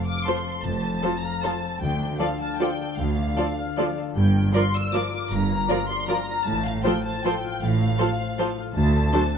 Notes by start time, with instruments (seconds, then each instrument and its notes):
Already playing: harp F3 C4 A4
0.06 harp F5, violin section D6
0.26 viola section F3 F4, violin section A4 C5 C6, harp C5
0.47 harp A4
0.64 double bass section F1, cello section F2, harp F3, violin section A5
0.83 harp C4
1.03 viola section F3 F4, violin section A4 C5, harp A4
1.23 harp F5, violin section A#5
1.43 viola section F3 F4, violin section A4 C5 A5, harp C5
1.63 harp A4
1.81 cello section D2, double bass section D2, harp D3, violin section G5
2.02 harp D4
2.20 viola section F3 F4, violin section A4 D5 F5, harp A4
2.40 harp F5, violin section A5
2.60 viola section F3 F4, violin section A4 D5 G5, harp D5
2.81 harp A4
2.98 double bass section D2, cello section D2, harp D3, violin section F5
3.18 harp D4
3.37 viola section F3 F4, violin section A4 D5, harp A4
3.59 harp F5
3.77 viola section F3 F4, violin section A4 D5, harp D5
3.98 harp A4
4.15 double bass section G1, cello section G2, harp G2, violin section G5
4.35 harp A#3
4.54 viola section F3 F4, harp F4, violin section A#4 D5 C6
4.74 harp D5, violin section E6
4.93 viola section F3 F4, violin section A#4 D5 D6, harp A#4
5.14 harp F4
5.31 double bass section G1, harp G2, cello section G2, violin section A#5
5.49 harp A#3
5.68 viola section F3 F4, harp F4, violin section A#4 D5
5.88 harp D5, violin section C6
6.08 viola section F3 F4, violin section A#4 D5 A#5, harp A#4
6.28 harp F4
6.45 double bass section A1, harp A2, cello section A2, violin section A5
6.65 harp A3, violin section F5
6.83 viola section F3 F4, harp F4, violin section A4 C5 G5
7.04 harp C5, violin section A5
7.24 viola section F3 F4, harp A4, violin section A4 C5 G5
7.44 harp F4
7.61 double bass section A1, cello section A2, harp A2, violin section F5
7.80 harp A3
7.99 viola section F3 F4, harp F4, violin section A4 C5
8.20 harp C5
8.38 viola section F3 F4, violin section A4 C5, harp A4
8.58 harp F4
8.75 double bass section D2, cello section D2, harp D3, violin section A5
8.96 harp C4
9.13 viola section F#3 D4, violin section A4 C5, harp A4
9.35 harp F#5